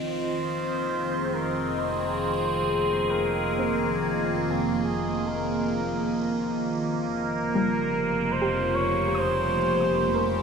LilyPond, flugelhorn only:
\new Staff \with { instrumentName = "Flugelhorn" } { \time 4/4 \key aes \major \tempo 4 = 69 c''4. bes'8 c''4. bes'8~ | bes'4 r8 aes'8 bes'4. r8 | bes'4. c''8 des''8 c''4. | }